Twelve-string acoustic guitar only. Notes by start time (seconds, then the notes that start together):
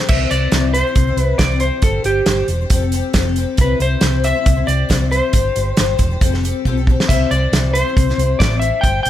Already playing: G4 A4
0.10 C3 E3 G3 C4 E4 C5
0.31 G3 C4 E4 C5
0.53 C3 E3 G3 C4 E4 C5
0.75 G3 C4 E4 C5
0.87 G3 C4 E4 C5
1.07 G3 C4 E4 C5
1.18 G3 C4 E4 C5
1.41 C3 E3 G3 C4 E4 C5
1.52 G3 C4 E4 C5
1.61 G3 C4 E4 C5
1.83 G3 D4 G4 C5
2.06 G3 D4 G4 C5
2.28 G3 D4 G4 C5
2.49 G3 D4 G4 C5
2.61 D4 G4 C5
2.71 F3 G3 C4 G4 A4
2.82 C4 G4 A4
2.92 G3 C4 G4 A4
3.14 F3 G3 C4 G4 A4
3.24 C4 G4 A4
3.37 G3 C4 G4 A4
3.58 C3 E3 G3 C4 E4 C5
3.81 G3 C4 E4 C5
4.03 C3 E3 G3 C4 E4 C5
4.24 G3 C4 E4 C5
4.35 G3 C4 E4 C5
4.55 G3 C4 E4 C5
4.67 G3 C4 E4 C5
4.89 C3 E3 G3 C4 E4 C5
4.99 G3 C4 E4 C5
5.11 G3 C4 E4 C5
5.33 G3 D4 G4 C5
5.56 G3 D4 G4 C5
5.76 G3 D4 G4 C5
5.98 G3 D4 G4 C5
6.10 D4 G4 C5
6.21 F3 G3 C4 G4 A4
6.32 C4 G4 A4
6.43 G3 C4 G4 A4
6.66 F3 G3 C4 G4 A4
6.77 C4 G4 A4
6.88 G3 C4 G4 A4
7.10 C3 E3 G3 C4 E4 C5
7.33 G3 C4 E4 C5
7.54 C3 E3 G3 C4 E4 C5
7.76 G3 C4 E4 C5
7.87 G3 C4 E4 C5
8.08 G3 C4 E4 C5
8.19 G3 C4 E4 C5
8.40 C3 E3 G3 C4 E4 C5
8.52 G3 C4 E4 C5
8.61 G3 C4 E4 C5
8.84 G3 D4 G4 C5
9.06 G3